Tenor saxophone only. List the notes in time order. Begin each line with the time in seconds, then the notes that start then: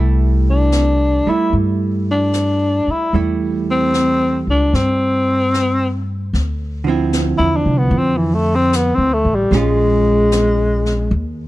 0.50 D4
1.29 E4
2.11 D4
2.91 E4
3.71 C4
4.50 D4
4.75 C4
7.38 E4
7.56 D4
7.78 B3
7.98 C4
8.17 E3
8.35 A3
8.55 C4
8.76 B3
8.95 C4
9.13 A3
9.35 G3
9.55 G#3